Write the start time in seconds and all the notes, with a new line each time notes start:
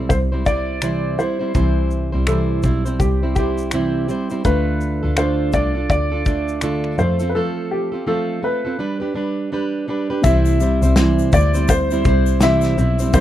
Already playing: C4 E4 A4 C5
0.00 G3
0.09 C2 C5, kick, shaker
0.32 G3 C4 E4 C5
0.45 G3 C4 E4 C5 D5, kick, shaker
0.82 C3 E3 G3 C4 E4 C5, finger snap, shaker
1.18 G3 C4 E4 C5, shaker
1.39 G3 C4 E4 C5
1.54 C2 C3 E3 G3 C4 E4 C5, kick, shaker
1.91 shaker
2.12 C2 G3 C4 E4 C5
2.27 C3 E3 G3 C4 E4 A4 C5, finger snap, shaker
2.63 B1 G3 C4 E4 C5, kick, shaker
2.85 G3 C4 E4 C5, shaker
2.99 C2 G4, kick, shaker
3.22 G3 C4 E4 C5
3.35 G3 C4 E4 G4 C5, kick, shaker
3.58 shaker
3.71 C3 E3 G3 C4 E4 C5, finger snap, shaker
4.08 G3 C4 E4 C5, shaker
4.30 G3 C4 E4 C5, shaker
4.45 D2 D3 A3 D4 F4 A4 B4, kick, shaker
4.81 shaker
5.03 D2 D4 F4 A4
5.17 D3 A3 D4 F4 A4 C5, finger snap, shaker
5.53 C2 A3 D4 F4 A4 D5, kick, shaker
5.75 D4 F4 A4
5.90 D2 D5, kick, shaker
6.12 D4 F4 A4
6.26 A3 D4 F4 A4, kick, shaker
6.48 shaker
6.61 D3 A3 D4 F4 A4, finger snap, shaker
6.84 finger snap
6.98 F2 A3 C4 F4 A4 C5, shaker
7.19 C4 F4 A4, shaker
7.29 B4
7.35 F3 A3 C4 F4 A4
7.71 G4
7.92 C4 F4 A4
8.06 F3 A3 C4 F4 A4
8.43 A3 C4 F4 A4 B4
8.65 C4 F4 A4
8.79 G3 D4 G4 B4
9.00 D4 G4 B4
9.14 G3 D4 G4 B4
9.52 G3 D4 G4 B4
9.88 G3 D4 G4 B4
10.10 D4 G4 B4
10.22 C2 C3 E3 G3 C4 E4 G4 C5 E5, kick, shaker
10.26 E5
10.45 shaker
10.60 G3 C4 E4 C5, shaker
10.81 C2 G3 C4 E4 C5, shaker
10.96 C3 E3 G3 C4 E4 C5, snare, shaker
11.19 shaker
11.32 D2 G3 C4 E4 C5 D5, kick, shaker
11.54 G3 C4 E4 C5, shaker
11.68 C5, kick, shaker
11.91 G3 C4 E4 C5, shaker
12.05 C2 G3 C4 E4 C5, kick, shaker
12.26 shaker
12.41 C3 E3 G3 C4 E4 C5 E5, snare, shaker
12.61 snare, shaker
12.77 B1 G3 C4 E4 C5, shaker
12.99 G3 C4 E4 C5, shaker
13.12 C2 C3 E3 G3 C4 E4 G4 C5 E5, kick, shaker